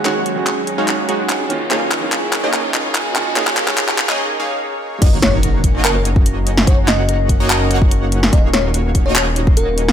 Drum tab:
CC |----------------|----------------|----------------|x---------------|
HH |x-x-x-x-x-x-x-x-|x-x-x-x-x-x-x-x-|x-x-x-x---------|x-x-x-x-x-x-x-x-|
CP |x---x---x---x---|x-x-x-x-x-x-x-x-|xxxxxxxx--------|--------x-------|
SD |----------------|----------------|----------------|--o------------o|
BD |----------------|----------------|----------------|o-----o----o----|

CC |----------------|----------------|
HH |x-x-x-x-x-x-x-x-|x-x-x-x-x-x-x-x-|
CP |--x-----x-------|--------x-------|
SD |--o------------o|--o------------o|
BD |o-----o----o----|o-----o----o----|